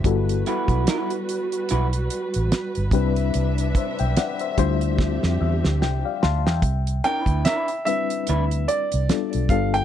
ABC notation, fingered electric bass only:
X:1
M:4/4
L:1/16
Q:"Swing 16ths" 1/4=73
K:Clyd
V:1 name="Fingered electric bass" clef=bass
G,,,2 z B,,, z4 B,,,2 z A,,, z G,,, C,,2 | C,,2 z B,,, z2 D,,3 =F,, E,, D,, C,, z D,, E,, | C,,2 z D,, z4 D,,2 z C,, z B,,, G,,,2 |]